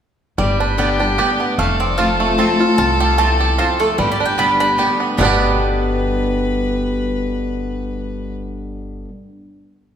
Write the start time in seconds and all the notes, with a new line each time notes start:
0.38 G1 G2 G3 G4 D5
0.60 D4 B4
0.78 D3 G3 B3 G4 D5 G5
1.00 B3 D4 G4
1.18 D3 G3 B3 G4 D5 G5
1.40 B3
1.58 F1 F2 A3 A4 F5
1.80 C4 D5
1.98 F3 A3 C4 F4 C5 F5 A5
2.20 A3
2.38 F3 A3 C4 F4 C5 A5
2.59 C4 F4
2.78 C2 C3 F4 A5
3.00 G4 F5
3.18 E2 A3 C4 F4 C5 A5
3.40 G4
3.58 F2 C4 F4 C5 A5
3.80 A3 A4
3.98 G1 G2 G3 G4 B4
4.12 D5
4.20 D4
4.25 G5
4.38 D3 G3 B3 G4 D5 G5 B5
4.60 D4 B5
4.78 D3 G3 B3 G4 D5 G5
5.00 B3
5.17 G1 G2 B2 D3 G3 B3 G4 B4 D5 G5 B5
5.23 D4 G4